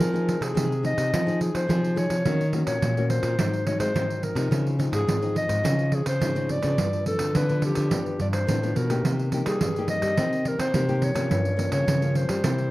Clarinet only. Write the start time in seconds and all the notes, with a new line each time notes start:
Already playing: A#4
0.43 G#4
0.86 D#5
1.42 G#4
1.55 C5
1.97 C#5
2.66 C#5
3.09 C5
3.66 C#5
3.80 C5
4.23 A#4
4.94 G#4
5.37 D#5
5.94 G#4
6.08 C5
6.51 D5
7.07 A4
7.36 B4
7.64 G4
8.21 D5
8.33 C5
8.76 A#4
9.47 G#4
9.90 D#5
10.48 A#4
10.61 C5
11.04 C#5
11.73 C#5
12.16 C5